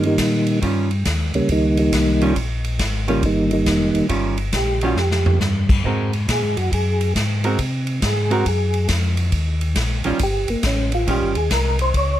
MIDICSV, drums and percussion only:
0, 0, Header, 1, 2, 480
1, 0, Start_track
1, 0, Tempo, 435414
1, 685, Time_signature, 4, 2, 24, 8
1, 13446, End_track
2, 0, Start_track
2, 0, Title_t, "Drums"
2, 37, Note_on_c, 9, 51, 40
2, 147, Note_off_c, 9, 51, 0
2, 198, Note_on_c, 9, 44, 50
2, 198, Note_on_c, 9, 51, 63
2, 201, Note_on_c, 9, 38, 55
2, 203, Note_on_c, 9, 36, 17
2, 309, Note_off_c, 9, 44, 0
2, 309, Note_off_c, 9, 51, 0
2, 311, Note_off_c, 9, 38, 0
2, 313, Note_off_c, 9, 36, 0
2, 513, Note_on_c, 9, 51, 42
2, 623, Note_off_c, 9, 51, 0
2, 685, Note_on_c, 9, 36, 20
2, 688, Note_on_c, 9, 51, 50
2, 795, Note_off_c, 9, 36, 0
2, 798, Note_off_c, 9, 51, 0
2, 999, Note_on_c, 9, 51, 39
2, 1110, Note_off_c, 9, 51, 0
2, 1161, Note_on_c, 9, 44, 55
2, 1161, Note_on_c, 9, 51, 55
2, 1163, Note_on_c, 9, 36, 16
2, 1163, Note_on_c, 9, 38, 61
2, 1272, Note_off_c, 9, 44, 0
2, 1272, Note_off_c, 9, 51, 0
2, 1274, Note_off_c, 9, 36, 0
2, 1274, Note_off_c, 9, 38, 0
2, 1476, Note_on_c, 9, 51, 39
2, 1586, Note_off_c, 9, 51, 0
2, 1639, Note_on_c, 9, 51, 49
2, 1642, Note_on_c, 9, 36, 18
2, 1750, Note_off_c, 9, 51, 0
2, 1752, Note_off_c, 9, 36, 0
2, 1953, Note_on_c, 9, 51, 44
2, 2064, Note_off_c, 9, 51, 0
2, 2122, Note_on_c, 9, 36, 18
2, 2123, Note_on_c, 9, 44, 50
2, 2123, Note_on_c, 9, 51, 64
2, 2125, Note_on_c, 9, 38, 56
2, 2232, Note_off_c, 9, 36, 0
2, 2233, Note_off_c, 9, 44, 0
2, 2233, Note_off_c, 9, 51, 0
2, 2235, Note_off_c, 9, 38, 0
2, 2441, Note_on_c, 9, 51, 40
2, 2551, Note_off_c, 9, 51, 0
2, 2601, Note_on_c, 9, 36, 20
2, 2602, Note_on_c, 9, 51, 49
2, 2711, Note_off_c, 9, 36, 0
2, 2712, Note_off_c, 9, 51, 0
2, 2915, Note_on_c, 9, 51, 43
2, 3025, Note_off_c, 9, 51, 0
2, 3079, Note_on_c, 9, 44, 45
2, 3079, Note_on_c, 9, 51, 58
2, 3080, Note_on_c, 9, 36, 23
2, 3081, Note_on_c, 9, 38, 57
2, 3189, Note_off_c, 9, 44, 0
2, 3189, Note_off_c, 9, 51, 0
2, 3190, Note_off_c, 9, 36, 0
2, 3191, Note_off_c, 9, 38, 0
2, 3396, Note_on_c, 9, 51, 40
2, 3506, Note_off_c, 9, 51, 0
2, 3558, Note_on_c, 9, 36, 23
2, 3558, Note_on_c, 9, 51, 52
2, 3668, Note_off_c, 9, 36, 0
2, 3668, Note_off_c, 9, 51, 0
2, 3867, Note_on_c, 9, 51, 39
2, 3977, Note_off_c, 9, 51, 0
2, 4037, Note_on_c, 9, 44, 56
2, 4037, Note_on_c, 9, 51, 56
2, 4038, Note_on_c, 9, 36, 19
2, 4039, Note_on_c, 9, 38, 55
2, 4147, Note_off_c, 9, 44, 0
2, 4147, Note_off_c, 9, 51, 0
2, 4148, Note_off_c, 9, 36, 0
2, 4149, Note_off_c, 9, 38, 0
2, 4351, Note_on_c, 9, 51, 41
2, 4461, Note_off_c, 9, 51, 0
2, 4512, Note_on_c, 9, 51, 53
2, 4515, Note_on_c, 9, 36, 21
2, 4622, Note_off_c, 9, 51, 0
2, 4626, Note_off_c, 9, 36, 0
2, 4823, Note_on_c, 9, 51, 40
2, 4933, Note_off_c, 9, 51, 0
2, 4989, Note_on_c, 9, 44, 56
2, 4989, Note_on_c, 9, 51, 55
2, 4991, Note_on_c, 9, 38, 56
2, 4996, Note_on_c, 9, 36, 22
2, 5099, Note_off_c, 9, 44, 0
2, 5099, Note_off_c, 9, 51, 0
2, 5101, Note_off_c, 9, 38, 0
2, 5106, Note_off_c, 9, 36, 0
2, 5305, Note_on_c, 9, 51, 40
2, 5415, Note_off_c, 9, 51, 0
2, 5476, Note_on_c, 9, 38, 42
2, 5587, Note_off_c, 9, 38, 0
2, 5639, Note_on_c, 9, 38, 51
2, 5749, Note_off_c, 9, 38, 0
2, 5799, Note_on_c, 9, 43, 72
2, 5909, Note_off_c, 9, 43, 0
2, 5959, Note_on_c, 9, 44, 58
2, 5961, Note_on_c, 9, 38, 50
2, 6069, Note_off_c, 9, 44, 0
2, 6071, Note_off_c, 9, 38, 0
2, 6276, Note_on_c, 9, 36, 64
2, 6279, Note_on_c, 9, 49, 63
2, 6386, Note_off_c, 9, 36, 0
2, 6389, Note_off_c, 9, 49, 0
2, 6444, Note_on_c, 9, 36, 20
2, 6554, Note_off_c, 9, 36, 0
2, 6760, Note_on_c, 9, 51, 40
2, 6870, Note_off_c, 9, 51, 0
2, 6925, Note_on_c, 9, 36, 17
2, 6929, Note_on_c, 9, 44, 44
2, 6929, Note_on_c, 9, 51, 64
2, 6931, Note_on_c, 9, 38, 60
2, 7035, Note_off_c, 9, 36, 0
2, 7039, Note_off_c, 9, 44, 0
2, 7039, Note_off_c, 9, 51, 0
2, 7041, Note_off_c, 9, 38, 0
2, 7242, Note_on_c, 9, 51, 43
2, 7353, Note_off_c, 9, 51, 0
2, 7406, Note_on_c, 9, 36, 25
2, 7414, Note_on_c, 9, 51, 53
2, 7517, Note_off_c, 9, 36, 0
2, 7524, Note_off_c, 9, 51, 0
2, 7724, Note_on_c, 9, 51, 44
2, 7834, Note_off_c, 9, 51, 0
2, 7886, Note_on_c, 9, 36, 17
2, 7890, Note_on_c, 9, 44, 48
2, 7890, Note_on_c, 9, 51, 61
2, 7893, Note_on_c, 9, 38, 57
2, 7996, Note_off_c, 9, 36, 0
2, 8001, Note_off_c, 9, 44, 0
2, 8001, Note_off_c, 9, 51, 0
2, 8003, Note_off_c, 9, 38, 0
2, 8200, Note_on_c, 9, 51, 44
2, 8310, Note_off_c, 9, 51, 0
2, 8362, Note_on_c, 9, 36, 19
2, 8363, Note_on_c, 9, 51, 53
2, 8473, Note_off_c, 9, 36, 0
2, 8473, Note_off_c, 9, 51, 0
2, 8673, Note_on_c, 9, 51, 42
2, 8783, Note_off_c, 9, 51, 0
2, 8842, Note_on_c, 9, 36, 22
2, 8842, Note_on_c, 9, 44, 44
2, 8842, Note_on_c, 9, 51, 59
2, 8845, Note_on_c, 9, 38, 62
2, 8952, Note_off_c, 9, 36, 0
2, 8953, Note_off_c, 9, 44, 0
2, 8953, Note_off_c, 9, 51, 0
2, 8955, Note_off_c, 9, 38, 0
2, 9160, Note_on_c, 9, 51, 39
2, 9271, Note_off_c, 9, 51, 0
2, 9321, Note_on_c, 9, 36, 18
2, 9325, Note_on_c, 9, 51, 54
2, 9431, Note_off_c, 9, 36, 0
2, 9435, Note_off_c, 9, 51, 0
2, 9630, Note_on_c, 9, 51, 42
2, 9740, Note_off_c, 9, 51, 0
2, 9795, Note_on_c, 9, 44, 51
2, 9795, Note_on_c, 9, 51, 63
2, 9797, Note_on_c, 9, 38, 63
2, 9800, Note_on_c, 9, 36, 21
2, 9905, Note_off_c, 9, 44, 0
2, 9905, Note_off_c, 9, 51, 0
2, 9907, Note_off_c, 9, 38, 0
2, 9910, Note_off_c, 9, 36, 0
2, 10110, Note_on_c, 9, 51, 42
2, 10220, Note_off_c, 9, 51, 0
2, 10274, Note_on_c, 9, 51, 50
2, 10279, Note_on_c, 9, 36, 23
2, 10384, Note_off_c, 9, 51, 0
2, 10389, Note_off_c, 9, 36, 0
2, 10594, Note_on_c, 9, 51, 42
2, 10705, Note_off_c, 9, 51, 0
2, 10754, Note_on_c, 9, 44, 47
2, 10754, Note_on_c, 9, 51, 58
2, 10756, Note_on_c, 9, 38, 59
2, 10760, Note_on_c, 9, 36, 17
2, 10864, Note_off_c, 9, 44, 0
2, 10864, Note_off_c, 9, 51, 0
2, 10866, Note_off_c, 9, 38, 0
2, 10871, Note_off_c, 9, 36, 0
2, 11068, Note_on_c, 9, 51, 43
2, 11178, Note_off_c, 9, 51, 0
2, 11236, Note_on_c, 9, 51, 58
2, 11241, Note_on_c, 9, 36, 24
2, 11347, Note_off_c, 9, 51, 0
2, 11352, Note_off_c, 9, 36, 0
2, 11551, Note_on_c, 9, 51, 43
2, 11662, Note_off_c, 9, 51, 0
2, 11718, Note_on_c, 9, 44, 50
2, 11718, Note_on_c, 9, 51, 60
2, 11720, Note_on_c, 9, 38, 63
2, 11723, Note_on_c, 9, 36, 20
2, 11828, Note_off_c, 9, 44, 0
2, 11828, Note_off_c, 9, 51, 0
2, 11830, Note_off_c, 9, 38, 0
2, 11833, Note_off_c, 9, 36, 0
2, 12037, Note_on_c, 9, 51, 43
2, 12147, Note_off_c, 9, 51, 0
2, 12205, Note_on_c, 9, 36, 19
2, 12209, Note_on_c, 9, 51, 52
2, 12316, Note_off_c, 9, 36, 0
2, 12320, Note_off_c, 9, 51, 0
2, 12514, Note_on_c, 9, 51, 41
2, 12624, Note_off_c, 9, 51, 0
2, 12684, Note_on_c, 9, 36, 19
2, 12684, Note_on_c, 9, 44, 56
2, 12684, Note_on_c, 9, 51, 64
2, 12686, Note_on_c, 9, 38, 63
2, 12794, Note_off_c, 9, 36, 0
2, 12794, Note_off_c, 9, 44, 0
2, 12794, Note_off_c, 9, 51, 0
2, 12797, Note_off_c, 9, 38, 0
2, 12996, Note_on_c, 9, 51, 41
2, 13107, Note_off_c, 9, 51, 0
2, 13164, Note_on_c, 9, 36, 23
2, 13164, Note_on_c, 9, 51, 52
2, 13274, Note_off_c, 9, 36, 0
2, 13275, Note_off_c, 9, 51, 0
2, 13446, End_track
0, 0, End_of_file